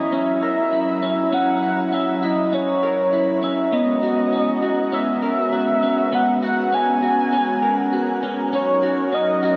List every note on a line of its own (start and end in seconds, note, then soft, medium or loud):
0.00 3.69 F#3 medium
0.00 0.12 C#4 medium
0.00 9.56 C#4 medium
0.00 0.71 E4 soft
0.00 3.69 E4 medium
0.00 0.16 D#5 medium
0.00 8.49 A#5 medium
0.13 1.02 C#4 medium
0.13 1.36 E5 loud
0.42 2.83 A#4 soft
0.73 1.61 E4 soft
1.03 1.32 C#4 medium
1.32 1.92 C#4 medium
1.32 1.95 F#5 medium
1.63 2.22 E4 medium
1.93 2.52 C#4 medium
1.93 2.25 E5 medium
2.23 3.12 E4 medium
2.23 2.56 D#5 medium
2.53 3.42 C#4 medium
2.53 3.45 C#5 medium
2.83 5.22 A#4 medium
3.13 3.79 E4 soft
3.43 4.32 C#4 medium
3.43 3.75 E5 medium
3.72 8.49 G#3 medium
3.72 8.49 B3 medium
3.72 6.11 B3 medium
3.72 8.48 F#4 medium
3.72 4.93 D#5 medium
4.03 4.62 F#4 medium
4.33 4.92 C#4 soft
4.62 5.52 F#4 medium
4.92 5.82 C#4 medium
4.92 6.16 E5 loud
5.23 7.62 A#4 soft
5.53 6.42 F#4 soft
5.83 6.72 C#4 soft
6.13 8.53 B3 medium
6.13 6.43 F#5 loud
6.43 7.02 F#4 medium
6.43 6.76 F#5 medium
6.73 7.32 C#4 medium
6.73 8.24 G#5 loud
7.03 7.92 F#4 soft
7.33 8.22 C#4 medium
7.62 9.56 A#4 medium
7.93 8.83 F#4 soft
8.23 8.53 C#4 medium
8.52 9.56 F#3 medium
8.52 9.12 C#4 medium
8.52 9.56 D#4 medium
8.52 9.56 A#4 medium
8.52 9.16 C#5 loud
8.83 9.42 F#4 medium
9.13 9.56 C#4 soft
9.13 9.56 D#5 loud
9.43 9.56 F#4 medium